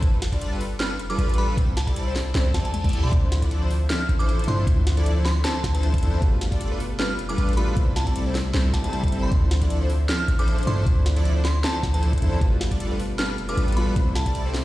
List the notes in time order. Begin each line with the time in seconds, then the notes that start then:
0.02 G1 G3 D4 F4 A4 B4, kick, closed hi-hat
0.22 snare, closed hi-hat
0.32 G3 D4 F4 A4 D5, kick, closed hi-hat
0.42 closed hi-hat
0.52 G3 D4 F4 A4 B4
0.61 open hi-hat
0.80 G3 D4 F4 A4 B4 F6, snare, closed hi-hat
0.90 F6
0.99 F1, closed hi-hat
1.10 G3 D4 F4 A4 B4 D6, closed hi-hat
1.18 A1, closed hi-hat
1.29 closed hi-hat
1.34 closed hi-hat
1.38 G3 D4 F4 A4 B4 B5, closed hi-hat
1.57 C2 G3 C4 E4 A4 C5, kick, closed hi-hat
1.77 A5, snare, closed hi-hat
1.87 G3 C4 E4 A4 D5 A5, kick, closed hi-hat
1.96 closed hi-hat
2.07 G3 C4 E4 A4 C5
2.16 snare, open hi-hat
2.35 C2 G3 C4 E4 A4 C5, snare, closed hi-hat, reverse cymbal
2.54 E2 G3 C4 E4 A4 D5 A5, kick, snare, closed hi-hat
2.65 A5, closed hi-hat
2.74 A5, closed hi-hat, high tom
2.84 G3 C4 E4 A4 D5, kick, closed hi-hat, high tom
2.89 closed hi-hat
2.93 D2, closed hi-hat
3.04 C6, mid tom
3.10 D2 D3 F3 C4 D4 E4 A4 C5, kick, closed hi-hat
3.32 snare, closed hi-hat
3.42 F3 D4 E4 A4 D5, kick, closed hi-hat
3.51 closed hi-hat
3.62 F3 D4 E4 A4 C5
3.71 open hi-hat
3.89 F3 D4 E4 A4 C5 F6, snare, closed hi-hat
4.00 F6
4.09 A1, closed hi-hat
4.19 F3 D4 E4 A4 C5 D6, closed hi-hat
4.29 closed hi-hat
4.39 closed hi-hat
4.44 G2 D3 F3 D4 E4 A4 C5, closed hi-hat
4.48 C4 E4 C6, closed hi-hat
4.65 D2 D3 F3 C4 D4 E4 A4 C5, kick, closed hi-hat
4.87 snare, closed hi-hat
4.97 F3 D4 E4 A4 D5, closed hi-hat
5.06 closed hi-hat
5.16 F3 D4 E4 A4 C5
5.25 C6, snare, open hi-hat
5.44 F3 D4 E4 A4 C5 A5, snare, closed hi-hat
5.55 A5
5.64 D2, kick, snare, closed hi-hat
5.74 F3 D4 E4 A4 C5 A5, closed hi-hat
5.83 closed hi-hat
5.94 kick, closed hi-hat
5.98 D3 F3, closed hi-hat
6.02 E2 F3 C4 D4 E4 A4 C5, closed hi-hat
6.20 G1 B2 G3 A3 D4 F4 A4 B4, kick, closed hi-hat
6.24 F4
6.41 snare, closed hi-hat
6.52 G3 D4 F4 A4 D5, kick, closed hi-hat
6.61 closed hi-hat
6.71 G3 D4 F4 A4 B4
6.80 open hi-hat
6.99 G3 D4 F4 A4 B4 F6, snare, closed hi-hat
7.10 F6
7.19 F1, closed hi-hat
7.29 G3 D4 F4 A4 B4 D6, closed hi-hat
7.38 A1, closed hi-hat
7.49 closed hi-hat
7.53 B2 B5, closed hi-hat
7.57 G3 A3 D4 F4 A4 B4, closed hi-hat
7.75 C2 C3 G3 A3 C4 E4 A4 C5, kick, closed hi-hat
7.96 A5, snare, closed hi-hat
8.07 G3 C4 E4 A4 D5 A5, kick, closed hi-hat
8.16 closed hi-hat
8.26 G3 C4 E4 A4 C5
8.35 snare, open hi-hat
8.54 C2 G3 C4 E4 A4 C5, snare, closed hi-hat
8.73 C3 G3 A3 G4 A5, kick, snare, closed hi-hat
8.82 C3 G3 A3 C4 E4 A4 C5 A5, closed hi-hat
8.86 E4
8.93 A5, closed hi-hat
9.03 kick, closed hi-hat
9.08 C5, closed hi-hat
9.12 G1 G3 C4 E4 A4 C5, closed hi-hat
9.23 C6
9.30 D2 D3 F3 C4 D4 E4 A4 C5, kick, closed hi-hat
9.34 E4
9.51 snare, closed hi-hat
9.61 F3 D4 E4 A4 D5, kick, closed hi-hat
9.70 closed hi-hat
9.81 F3 D4 E4 A4 C5
9.90 open hi-hat
10.09 F3 D4 E4 A4 C5 F6, snare, closed hi-hat
10.20 F6
10.28 A1, closed hi-hat
10.39 F3 D4 E4 A4 C5 D6, closed hi-hat
10.48 closed hi-hat
10.58 closed hi-hat
10.63 D3 F3, closed hi-hat
10.67 G2 F3 C4 D4 E4 A4 C5 C6, closed hi-hat
10.84 D2 D3 F3 C4 D4 E4 A4 C5, kick, closed hi-hat
10.88 E4
11.06 snare, closed hi-hat
11.16 F3 D4 E4 A4 D5, closed hi-hat
11.25 closed hi-hat
11.36 F3 D4 E4 A4 C5
11.45 C6, snare, open hi-hat
11.64 F3 D4 E4 A4 C5 A5, snare, closed hi-hat
11.74 A5
11.83 D2, kick, snare, closed hi-hat
11.94 F3 D4 E4 A4 C5 A5, closed hi-hat
12.03 closed hi-hat
12.13 kick, closed hi-hat
12.18 D3 F3, closed hi-hat
12.22 E2 F3 C4 D4 E4 A4 C5, closed hi-hat
12.39 G1 B2 G3 A3 D4 F4 A4 B4, kick, closed hi-hat
12.43 F4
12.61 snare, closed hi-hat
12.71 G3 D4 F4 A4 D5, kick, closed hi-hat
12.80 closed hi-hat
12.91 G3 D4 F4 A4 B4
13.00 open hi-hat
13.18 G3 D4 F4 A4 B4 F6, snare, closed hi-hat
13.30 F6
13.38 F1, closed hi-hat
13.49 G3 D4 F4 A4 B4 D6, closed hi-hat
13.57 A1, closed hi-hat
13.68 closed hi-hat
13.72 B2, closed hi-hat
13.76 G3 A3 D4 F4 A4 B4 B5, closed hi-hat
13.94 C2 C3 G3 A3 C4 E4 A4 C5, kick, closed hi-hat
13.98 E4
14.15 A5, snare, closed hi-hat
14.26 G3 C4 E4 A4 D5 A5, kick, closed hi-hat
14.35 closed hi-hat
14.45 G3 C4 E4 A4 C5
14.54 snare, open hi-hat